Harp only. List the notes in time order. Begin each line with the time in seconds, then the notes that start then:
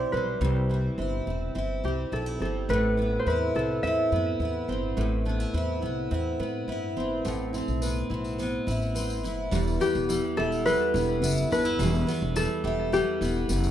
Already playing: C5 D5 E5 G5
0.12 B4
1.85 G4
2.13 A4
2.42 A4
2.70 B4
3.19 C5
3.28 B4
3.56 A4
3.83 E5
9.81 G4
10.37 A4
10.66 B4
11.52 B4
12.36 A4
12.93 G4